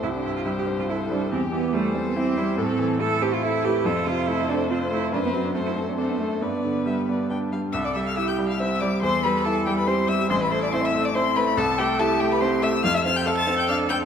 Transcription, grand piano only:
X:1
M:3/4
L:1/8
Q:1/4=141
K:C
V:1 name="Grand piano"
C,, G,, G, C E G, | E,, E, G, C E G, | A,, E, A, C E A, | F,, C, A, C F A, |
^F,, ^F, A, C D A, | G,, D, G, B, D G, | C,, G, E G, C G, | E,, G, E G, C G, |
A,,, A, E A, C A, | C,, A, E A, C A, | F,, C A C D C |]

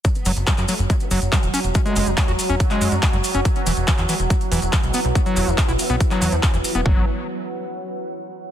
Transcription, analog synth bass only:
X:1
M:4/4
L:1/16
Q:1/4=141
K:Emix
V:1 name="Analog synth bass" clef=bass
z2 F,,, F,,, z F,, z F,,, z2 F,,, F,,, z E,,, z E,,, | z2 F,,, F,,, z E,,, z E,,, z2 F,, F,, z F,,, z F,,, | z2 E,,, E,,, z E,, z E,,, z2 E,,, E,,, z B,,, z B,,, | z2 E,,, E,,, z B,,, z B,,, z2 E,, E,, z E,,, z E,,, |
F,,,2 z12 z2 |]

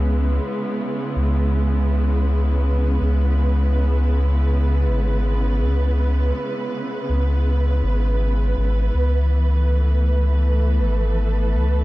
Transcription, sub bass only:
X:1
M:4/4
L:1/8
Q:"Swing 16ths" 1/4=81
K:C#m
V:1 name="Sub bass" clef=bass
C,, z2 C,,4- C,, | C,,4- C,, G,,,2 C,,- | C,, z2 C,,2 G,,,2 G,,, | C,,4- C,, G,,,2 C,, |]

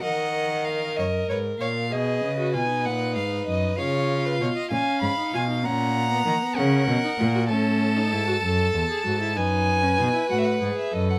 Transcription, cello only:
X:1
M:12/8
L:1/8
Q:3/8=64
K:G#m
V:1 name="Cello" clef=bass
D,3 F,, G,, A,, B,, C, B,, A,, G,, F,, | C,2 B,, A,, G,, B,, A,,2 D, C, B,, A,, | [K:F#dor] A,,2 G,, F,, E,, G,, F,,2 B,, A,, G,, F,, |]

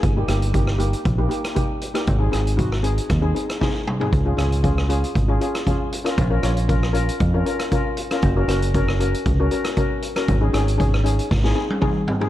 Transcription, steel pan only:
X:1
M:4/4
L:1/16
Q:1/4=117
K:Abmix
V:1 name="Steel pan"
z [B,E=G] [B,EG] z [B,EG] z [B,EG]2 z [B,EG] [B,EG] z [B,EG]2 z [B,EG] | z [CEA] [CEA] z [CEG] z [CEA]2 z [CEA] [CEA] z [CEA]2 z [CEA] | z [DFA] [DFA] z [DFA] z [DFA]2 z [DFA] [DFA] z [DFA]2 z [DFB] | z [DFB] [DFd] z [DFB] z [DFB]2 z [DFB] [DFB] z [DFB]2 z [DFB] |
z [DGB] [DGB] z [DGB] z [DGB]2 z [DGB] [DGB] z [DGB]2 z [DGB] | z [DEA] [DEA] z [DEA] z [DEA]2 z [CEA] [CEA] z [CEA]2 z [CEA] |]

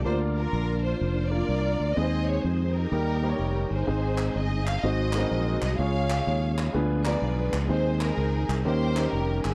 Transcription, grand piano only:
X:1
M:4/4
L:1/8
Q:"Swing" 1/4=126
K:Ab
V:1 name="Grand piano"
[B,=DFB=d]3 z2 [B,DFBd]2 z | [A,CEA_c=c]3 z [G,B,EGB] [G,B,EGcd]2 z | [A,CEAc]3 z [CE_GAc] [_C=CEGAB]2 z | [A,DFAd]3 z [=B,=DFA=B] [B,DFA_b]2 z |
[A,CEAc]3 z [B,DEGB] [B,DEGB]2 z |]
V:2 name="Grand piano" clef=bass
=D,3 z4 z | E,3 z E,3 z | A,,3 z A,,3 z | D,3 z =D,3 z |
E,3 z E,3 z |]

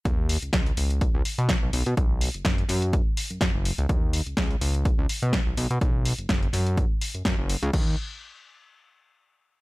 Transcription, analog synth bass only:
X:1
M:4/4
L:1/16
Q:"Swing 16ths" 1/4=125
K:Cblyd
V:1 name="Analog synth bass" clef=bass
E,,3 D,, D,,2 ^C,,3 C,, z =B,,2 =B,,, B,,, B,, | =B,,,3 ^F,,, F,,,2 ^F,,3 z2 G,, G,, G,,,2 D,, | E,,3 D,, D,,2 ^C,,3 C,, z =B,,2 =B,,, B,,, B,, | =B,,,3 ^F,,, F,,,2 ^F,,3 z2 G,, G,, G,,,2 D,, |
E,,2 z12 z2 |]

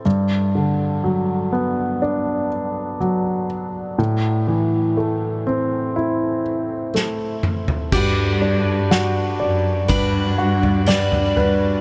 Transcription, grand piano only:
X:1
M:4/4
L:1/8
Q:1/4=61
K:G
V:1 name="Grand piano"
G,, D, F, B, D2 F,2 | A,, E, A, C E2 A,2 | G D F d B F d B |]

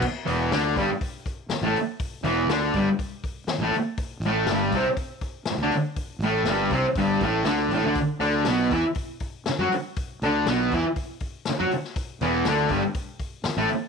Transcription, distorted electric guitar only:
X:1
M:4/4
L:1/16
Q:1/4=121
K:Bdor
V:1 name="Distorted electric guitar" clef=bass
z2 [E,,E,]2 [D,D]2 [=G,,=G,] z6 [A,,A,] z2 | z2 [E,,E,]2 [D,D]2 [=G,,=G,] z6 [A,,A,] z2 | z2 [A,,A,]2 [=G,,=G,]2 [=C,=C] z6 [D,D] z2 | z2 [A,,A,]2 [=G,,=G,]2 [=C,=C] z [G,,G,]2 [A,,A,]2 [D,D]2 [A,,A,] [D,D] |
z2 [D,D]2 [B,,B,]2 [E,E] z6 [F,F] z2 | z2 [D,D]2 [B,,B,]2 [E,E] z6 [F,F] z2 | z2 [E,,E,]2 [D,D]2 [=G,,=G,] z6 [A,,A,] z2 |]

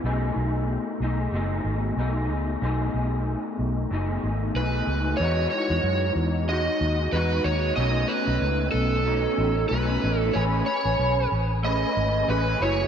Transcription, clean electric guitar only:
X:1
M:4/4
L:1/8
Q:"Swing 16ths" 1/4=93
K:Bmix
V:1 name="Clean electric guitar"
[B,,A,DG]3 [A,DG] [B,,A,DG]2 [B,,A,DG]2 | [B,,A,DG]4 [B,,A,DG]2 [B,,A,DG]2 | [E,G,DF]4 [G,DF]2 [G,DF]2 | [B,,A,CD]4 [B,,A,CD]2 [B,,A,CD]2 |
[A,CGB] [CGB]3 [A,CGB]2 [A,CGB] [F,A,EG] |]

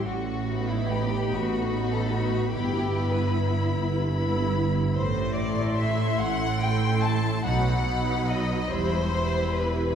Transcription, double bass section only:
X:1
M:6/8
L:1/8
Q:3/8=49
K:Em
V:1 name="Double bass section" clef=bass
A,,,3 A,,,3 | G,,,3 G,,,3 | A,,,3 A,,,3 | B,,,3 E,,,3 |]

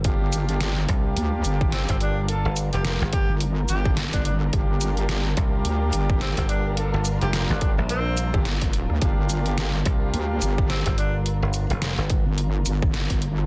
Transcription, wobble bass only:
X:1
M:4/4
L:1/16
Q:"Swing 16ths" 1/4=107
K:Gm
V:1 name="Wobble bass" clef=bass
G,,,6 z2 D,,2 G,,,3 z3 | z6 z G,,,3 G,,,3 G,,,3 | G,,,6 z2 D,,2 G,,,3 z3 | z8 z3 G,,,4 D,, |
G,,,6 z2 D,,2 G,,,3 z3 | z6 z G,,,3 G,,,3 G,,,3 |]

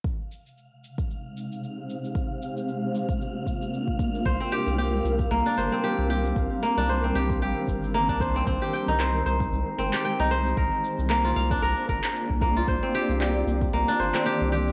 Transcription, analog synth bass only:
X:1
M:4/4
L:1/16
Q:"Swing 16ths" 1/4=114
K:Ablyd
V:1 name="Analog synth bass" clef=bass
z16 | z16 | C,, z2 C,,3 C,,2 C,, z G,,, z2 C,,3 | C,, z2 C,,3 C,,2 B,,, z G,,,3 C,,3 |
C,, z2 C,,3 C,,2 C,, z G,,, z2 C,,3 | C,, z2 C,,3 C,,2 C,, z G,,, z2 C,,3 | C,, z2 C,,3 C,,2 C,, z G,,, z2 C,,3 |]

